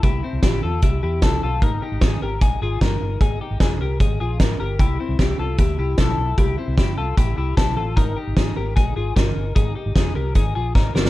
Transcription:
0.03 C2 E4 G4, kick, closed hi-hat
0.23 C4 E4
0.33 C2
0.43 A1 E4 G4, kick, snare, closed hi-hat
0.63 E2 F4 A4
0.82 C2 E4 G4, kick, closed hi-hat
1.03 E2 E4 G4
1.22 C2 E4 A4, kick, snare, closed hi-hat
1.43 B1 F4 A4
1.62 G#1 D#4 A#4, kick, closed hi-hat
1.82 D#4 G4
1.92 G#1
2.01 G#1 D#4 G#4, kick, snare, closed hi-hat
2.22 G#1 G4 A#4
2.41 A#1 D#4 G#4, kick, closed hi-hat
2.61 G#1 F4 G#4
2.81 G1 D#4 A#4, kick, snare, closed hi-hat
3.01 G1
3.21 G#1 D#4 G#4, kick, closed hi-hat
3.41 D#4 G4
3.51 G#1
3.60 F1 D#4 G#4, kick, snare, closed hi-hat
3.80 C2 G4 A#4
4.00 G#1 D#4 G#4, kick, closed hi-hat
4.20 A#1 F4 G#4
4.40 G#1 D#4 A#4, kick, snare, closed hi-hat
4.60 G1 G4 A#4
4.79 C2 E4 G4, kick, closed hi-hat
5.00 C4 E4
5.09 C2
5.19 C2 E4 G4, kick, snare, closed hi-hat
5.38 C2 F4 A4
5.58 D2 E4 G4, kick, closed hi-hat
5.78 C2 E4 G4
5.98 B1 E4 A4, kick, snare, closed hi-hat
6.18 B1
6.38 C2 E4 G4, kick, closed hi-hat
6.58 C4 E4
6.68 C2
6.78 G1 E4 G4, kick, snare, closed hi-hat
6.98 C2 F4 A4
7.17 A1 E4 G4, kick, closed hi-hat
7.37 C2 E4 G4
7.57 B1 E4 A4, kick, snare, closed hi-hat
7.77 A1 F4 A4
7.97 G#1 D#4 A#4, kick, closed hi-hat
8.17 D#4 G4
8.27 G#1
8.37 G#1 D#4 G#4, kick, snare, closed hi-hat
8.56 G#1 G4 A#4
8.76 A#1 D#4 G#4, kick, closed hi-hat
8.96 G#1 F4 G#4
9.16 G1 D#4 A#4, kick, snare, closed hi-hat
9.36 G1
9.56 G#1 D#4 G#4, kick, closed hi-hat
9.75 D#4 G4
9.86 G#1
9.95 F1 D#4 G#4, kick, snare, closed hi-hat
10.15 C2 G4 A#4
10.35 G#1 D#4 G#4, kick, closed hi-hat
10.55 A#1 F4 G#4
10.75 G#1 D#4 A#4, kick, snare
10.95 G1 G4 A#4, snare
11.05 snare

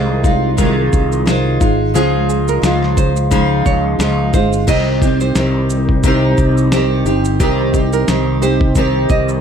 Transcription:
Already playing: C2 D#3 G#3 D#4 F4 C5
0.23 G#3 D#4 F4, kick, shaker
0.57 C3 D#3 G#3 D#4 F4, kick, shaker
0.93 C2, kick, shaker
1.12 shaker
1.26 D#3 G#3 D#4 F4 C5, snare, shaker
1.60 G#1 G#3 D#4 F4, kick, shaker
1.94 C#2 C#3 F3 G#3 D#4 F4 G#4, shaker
2.29 shaker
2.48 A#4, shaker
2.62 C#2 F3 G#3 D#4 F4, snare, shaker
2.83 snare
2.97 C5, kick, shaker
3.16 shaker
3.31 C#3 F3 G#3 D#4 F4, kick, shaker
3.66 C#2 C#5, kick, shaker
3.98 C#2 F3 G#3 D#4 F4, snare, shaker
4.33 G1 G#3 D#4 F4 C5, kick, shaker
4.53 shaker
4.67 C2 C3 D#3 C4 D#4 G4 D#5, kick, crash, shaker
5.02 C4 D#4 G4, kick, shaker
5.20 C5, shaker
5.35 C2 D#3 C4 D#4 G4, snare, shaker
5.70 shaker
5.89 kick
6.03 C3 D#3 C4 D#4 G4, kick, shaker
6.38 C2, kick, shaker
6.58 shaker
6.72 D#3 C4 D#4 G4 C5, snare, shaker
7.05 G1 C4 D#4 G4, shaker
7.25 shaker
7.40 C2 C3 D#3 C4 D#4 G4, kick, shaker
7.73 C4 D#4 G4, kick, shaker
7.93 A#4, shaker
8.08 C2 D#3 C4 D#4 G4, snare, shaker
8.42 C4 D#4 G4 C5, shaker
8.61 kick
8.75 C3 D#3 C4 D#4 G4, kick, shaker
9.09 C2 D#5, kick, shaker
9.29 shaker

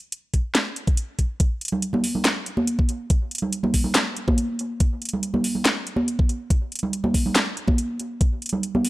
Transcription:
0.12 closed hi-hat
0.34 kick, closed hi-hat
0.55 snare, closed hi-hat
0.76 closed hi-hat
0.87 kick, closed hi-hat
0.97 closed hi-hat
1.19 kick, closed hi-hat
1.40 kick, closed hi-hat
1.61 closed hi-hat
1.65 closed hi-hat
1.68 closed hi-hat
1.72 low conga
1.82 closed hi-hat
1.93 high conga, low conga
2.04 open hi-hat
2.15 low conga
2.25 snare, clap, closed hi-hat
2.46 closed hi-hat
2.57 high conga
2.67 closed hi-hat
2.79 kick
2.89 closed hi-hat
3.10 kick, closed hi-hat
3.31 closed hi-hat
3.35 closed hi-hat
3.38 closed hi-hat, low conga
3.53 closed hi-hat
3.63 high conga, low conga
3.74 kick, open hi-hat
3.84 low conga
3.95 snare, clap, closed hi-hat
4.17 closed hi-hat
4.28 kick, high conga
4.38 closed hi-hat
4.59 closed hi-hat
4.80 kick, closed hi-hat
5.02 closed hi-hat
5.05 closed hi-hat
5.09 closed hi-hat
5.13 low conga
5.23 closed hi-hat
5.34 high conga, low conga
5.44 open hi-hat
5.55 low conga
5.65 snare, clap, closed hi-hat
5.87 closed hi-hat
5.96 high conga
6.08 closed hi-hat
6.19 kick
6.29 closed hi-hat
6.50 kick, closed hi-hat
6.72 closed hi-hat
6.75 closed hi-hat
6.79 closed hi-hat
6.83 low conga
6.93 closed hi-hat
7.04 high conga, low conga
7.14 kick, open hi-hat
7.26 low conga
7.36 snare, clap, closed hi-hat
7.57 closed hi-hat
7.68 kick, high conga
7.78 closed hi-hat
8.00 closed hi-hat
8.21 kick, closed hi-hat
8.42 closed hi-hat
8.46 closed hi-hat
8.49 closed hi-hat, low conga
8.63 closed hi-hat
8.75 high conga, low conga
8.85 open hi-hat

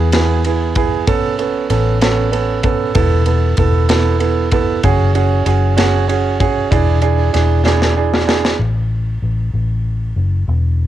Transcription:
Already playing: E2
0.12 B3 E4 G#4, snare, ride
0.44 B3 E4 G#4, ride
0.75 B3 E4 G#4, kick, ride
1.07 A1 B3 C#4 A4, kick, ride
1.38 B3 C#4 A4, ride
1.70 A1 B3 C#4 A4, ride
2.01 B3 C#4 A4, snare, ride
2.32 B3 C#4 A4, ride
2.63 B3 C#4 A4, kick, ride
2.94 E1 B3 E4 A4, kick, ride
3.26 B3 E4 A4, ride
3.57 E1 B3 E4 A4, kick, ride
3.89 B3 E4 A4, snare, ride
4.20 B3 E4 A4, ride
4.51 B3 E4 A4, kick, ride
4.83 F#1 C#4 F#4 G#4, kick, ride
5.15 C#4 F#4 G#4, ride
5.45 F#1 C#4 F#4 G#4, ride
5.77 C#4 F#4 G#4, snare, ride
6.08 C#4 F#4 G#4, ride
6.40 C#4 F#4 G#4, kick, ride
6.71 E1 D4 E4 G#4, kick, ride
7.02 D4 E4 G#4, ride
7.33 E1 D4 E4 G#4, snare, ride
7.65 D4 E4 G#4, snare
7.82 snare
7.96 D4 E4 G#4
8.14 snare
8.27 D4 E4 G#4, snare
8.45 snare
8.59 A1
9.22 A1
9.54 A1
10.16 F#1
10.48 E1

